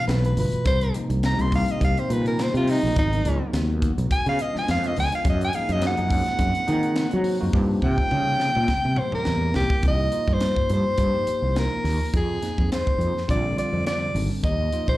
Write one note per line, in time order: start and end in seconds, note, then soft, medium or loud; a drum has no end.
0.00 0.34 B2 medium
0.00 0.34 E3 medium
0.00 0.34 A3 medium
0.00 0.34 D4 medium
0.08 0.33 B1 medium
0.08 0.23 B4 medium
0.08 snare loud
0.08 closed hi-hat medium
0.25 0.37 B4 medium
0.25 closed hi-hat soft
0.37 0.51 G1 medium
0.37 0.66 B2 medium
0.37 0.66 E3 medium
0.37 0.66 A3 medium
0.37 0.67 F4 medium
0.37 0.67 B4 medium
0.37 open hi-hat medium
0.52 muted fretless electric bass stroke soft
0.52 closed hi-hat soft
0.64 0.90 C2 medium
0.64 4.06 D#3 medium
0.64 2.93 G3 medium
0.64 2.93 C4 medium
0.64 2.93 G4 medium
0.64 4.07 A#4 medium
0.64 0.95 C5 loud
0.64 kick loud
0.64 closed hi-hat medium
0.81 closed hi-hat soft
0.94 1.22 C3 medium
0.94 1.22 F3 medium
0.94 1.22 A#3 medium
0.94 1.22 D#4 medium
0.94 closed hi-hat medium
1.10 1.34 C2 loud
1.10 closed hi-hat soft
1.23 1.37 C3 medium
1.23 1.37 F3 medium
1.23 1.38 A#3 medium
1.23 1.38 D#4 medium
1.23 1.43 A#5 medium
1.23 snare loud
1.23 closed hi-hat medium
1.39 1.63 C2 medium
1.39 2.04 C3 medium
1.39 2.04 F3 medium
1.39 2.04 A#3 medium
1.39 2.04 D#4 medium
1.39 1.53 C6 medium
1.39 closed hi-hat soft
1.52 1.73 F5 medium
1.52 kick medium
1.52 open hi-hat medium
1.68 1.82 D#5 medium
1.68 closed hi-hat soft
1.81 1.94 C2 medium
1.81 2.01 F5 medium
1.81 kick medium
1.81 closed hi-hat medium
1.97 2.14 C5 medium
1.97 closed hi-hat soft
2.09 2.47 A#2 medium
2.09 2.76 C3 medium
2.09 2.76 F3 medium
2.09 2.76 A#3 medium
2.09 2.76 D#4 medium
2.09 2.26 B4 medium
2.09 closed hi-hat medium
2.26 2.44 A#4 medium
2.26 closed hi-hat soft
2.39 2.55 C5 medium
2.39 snare loud
2.39 closed hi-hat medium
2.54 2.79 C3 medium
2.54 2.72 F4 medium
2.54 closed hi-hat soft
2.67 2.97 D#4 medium
2.67 open hi-hat medium
2.83 2.94 A#1 medium
2.83 2.95 C3 medium
2.83 2.95 F3 medium
2.83 2.95 A#3 medium
2.83 2.95 D#4 medium
2.96 3.20 G#1 loud
2.96 4.02 C#3 medium
2.96 4.03 F#3 medium
2.96 4.10 G#3 medium
2.96 4.03 B3 medium
2.96 5.24 B3 medium
2.96 4.03 D#4 medium
2.96 3.53 D#4 loud
2.96 4.11 F#4 medium
2.96 kick loud
2.96 closed hi-hat medium
3.13 closed hi-hat soft
3.25 3.38 C#2 medium
3.25 closed hi-hat medium
3.53 3.91 D#2 medium
3.53 snare loud
3.53 closed hi-hat medium
3.82 kick medium
3.82 closed hi-hat medium
3.98 4.09 B1 medium
3.98 closed hi-hat soft
4.10 5.24 C#3 medium
4.10 5.24 D3 medium
4.10 5.25 G#3 medium
4.10 5.24 F4 medium
4.10 4.26 G#5 loud
4.10 kick medium
4.10 closed hi-hat medium
4.26 4.38 C#3 medium
4.26 4.43 F5 loud
4.26 closed hi-hat soft
4.39 4.55 D#5 medium
4.39 closed hi-hat medium
4.54 4.93 F3 medium
4.54 4.93 G#3 medium
4.54 4.93 B3 medium
4.54 4.93 D4 medium
4.54 muted fretless electric bass stroke soft
4.54 snare soft
4.58 4.69 G#5 medium
4.68 4.93 F2 medium
4.68 4.88 F5 medium
4.68 snare loud
4.68 closed hi-hat medium
4.84 4.98 D#5 medium
4.84 closed hi-hat soft
4.96 5.11 C#2 medium
4.96 5.25 F3 medium
4.96 5.25 G#3 medium
4.96 5.25 B3 medium
4.96 5.26 D4 medium
4.96 5.13 G#5 loud
4.96 open hi-hat medium
5.12 5.26 F5 medium
5.12 closed hi-hat soft
5.25 5.49 F#2 medium
5.25 8.66 C#3 medium
5.25 7.53 G#3 medium
5.25 7.51 A#3 medium
5.25 7.53 C4 medium
5.25 7.53 F#5 medium
5.25 kick loud
5.25 closed hi-hat medium
5.30 5.42 D#5 medium
5.41 5.57 G#5 medium
5.41 closed hi-hat soft
5.53 5.81 F3 medium
5.53 5.81 A#3 medium
5.53 5.81 D#4 medium
5.53 5.81 G#4 medium
5.53 5.74 F5 medium
5.53 closed hi-hat medium
5.69 5.94 F#2 loud
5.69 5.83 D#5 loud
5.69 closed hi-hat soft
5.82 5.96 F3 medium
5.82 5.96 A#3 medium
5.82 5.96 D#4 medium
5.82 5.97 G#4 medium
5.82 snare loud
5.82 closed hi-hat medium
5.86 7.53 F#5 loud
5.97 6.23 F#2 medium
5.97 6.63 F3 medium
5.97 6.63 A#3 medium
5.97 6.63 D#4 medium
5.97 6.63 G#4 medium
5.97 closed hi-hat soft
6.10 kick medium
6.10 open hi-hat medium
6.26 snare soft
6.26 closed hi-hat soft
6.39 6.53 F#2 medium
6.39 kick medium
6.39 closed hi-hat medium
6.55 closed hi-hat soft
6.67 7.06 D#3 medium
6.67 7.34 F3 medium
6.67 7.34 A#3 medium
6.67 7.34 D#4 medium
6.67 7.35 G#4 loud
6.67 closed hi-hat medium
6.83 closed hi-hat soft
6.96 snare loud
6.96 closed hi-hat medium
7.11 7.38 F#3 medium
7.11 closed hi-hat soft
7.24 open hi-hat medium
7.40 7.53 F#2 medium
7.40 7.53 F3 medium
7.40 7.52 A#3 medium
7.40 7.52 D#4 medium
7.40 7.53 F#4 loud
7.51 7.78 G2 loud
7.51 8.60 F3 medium
7.51 8.66 G3 medium
7.51 9.81 A#3 medium
7.51 8.60 A#3 medium
7.51 8.67 C#4 medium
7.51 8.60 D#4 medium
7.51 8.67 G4 medium
7.51 8.60 G4 loud
7.51 kick loud
7.82 7.96 C3 medium
7.82 9.00 G5 loud
7.82 kick medium
7.98 kick medium
8.11 8.49 C#3 medium
8.11 mid tom medium
8.40 snare medium
8.55 8.67 A#2 medium
8.55 mid tom medium
8.66 9.82 C3 medium
8.66 9.82 C#3 medium
8.66 9.82 G3 medium
8.66 9.82 E4 medium
8.66 muted fretless electric bass stroke soft
8.66 kick medium
8.66 snare medium
8.85 8.96 C3 medium
8.96 9.13 C5 medium
8.96 mid tom medium
9.12 9.52 A#3 medium
9.12 9.52 C#4 medium
9.12 9.52 E4 medium
9.12 9.52 G4 medium
9.12 9.55 A#4 loud
9.12 muted fretless electric bass stroke soft
9.12 mid tom medium
9.25 9.51 E2 medium
9.25 snare loud
9.54 9.69 C2 medium
9.54 9.83 A#3 medium
9.54 9.84 C#4 medium
9.54 9.84 E4 medium
9.54 9.84 G4 loud
9.54 9.84 A#4 medium
9.54 snare loud
9.70 muted fretless electric bass stroke soft
9.70 kick medium
9.83 10.08 C2 loud
9.83 10.11 F3 medium
9.83 10.10 A#3 medium
9.83 10.11 D#4 medium
9.83 10.11 G4 medium
9.83 kick loud
9.83 closed hi-hat medium
9.88 10.35 D#5 loud
10.12 11.05 F3 medium
10.12 11.05 A#3 medium
10.12 11.05 D#4 medium
10.12 11.05 F4 medium
10.12 closed hi-hat medium
10.28 10.52 G2 medium
10.28 kick medium
10.33 10.73 C5 loud
10.41 snare medium
10.41 closed hi-hat medium
10.56 kick medium
10.70 10.83 G2 medium
10.70 11.54 C5 loud
10.70 closed hi-hat medium
10.86 muted fretless electric bass stroke soft
10.98 11.12 G2 medium
10.98 kick medium
10.98 closed hi-hat medium
11.13 11.53 F3 medium
11.13 11.52 A#3 medium
11.13 11.53 D#4 medium
11.13 11.53 G4 medium
11.27 muted fretless electric bass stroke soft
11.27 closed hi-hat medium
11.42 11.67 C2 medium
11.55 12.13 F3 medium
11.55 12.13 A#3 medium
11.55 12.14 D#4 medium
11.55 12.14 A#4 medium
11.55 12.11 A#4 medium
11.55 snare medium
11.55 closed hi-hat medium
11.84 11.98 D#2 medium
11.84 snare soft
11.84 open hi-hat medium
12.13 12.38 F2 medium
12.13 12.69 G#4 medium
12.13 kick loud
12.13 closed hi-hat medium
12.42 13.22 F3 medium
12.42 13.22 A#3 medium
12.42 13.22 D#4 medium
12.42 13.22 G#4 medium
12.42 snare soft
12.42 closed hi-hat medium
12.58 12.69 F2 medium
12.58 kick medium
12.72 13.25 C5 medium
12.72 snare loud
12.72 closed hi-hat medium
12.87 muted fretless electric bass stroke soft
12.87 kick medium
12.98 13.13 F2 medium
12.98 closed hi-hat soft
13.17 snare soft
13.28 13.53 A#1 medium
13.28 13.55 D3 medium
13.28 13.55 G3 medium
13.28 13.55 C4 medium
13.28 13.55 F4 medium
13.28 13.57 D5 medium
13.28 kick medium
13.28 closed hi-hat medium
13.56 14.11 D3 medium
13.56 14.10 G3 medium
13.56 14.11 C4 medium
13.56 14.11 F4 medium
13.56 13.85 D5 medium
13.56 closed hi-hat medium
13.73 14.08 F2 medium
13.87 14.28 D5 loud
13.87 snare loud
13.87 closed hi-hat medium
14.14 14.28 G#1 medium
14.14 14.42 D3 medium
14.14 14.42 G3 medium
14.14 14.42 C4 medium
14.14 14.42 D4 medium
14.14 open hi-hat medium
14.43 14.68 D#2 medium
14.43 14.70 F3 medium
14.43 14.70 A#3 medium
14.43 14.70 D#4 medium
14.43 14.70 G4 medium
14.43 14.86 D#5 medium
14.43 kick medium
14.43 closed hi-hat medium
14.72 14.97 F3 medium
14.72 14.97 A#3 medium
14.72 14.97 D#4 medium
14.72 14.97 F4 medium
14.72 closed hi-hat medium
14.88 14.97 A#1 medium
14.88 14.97 C5 medium
14.88 kick medium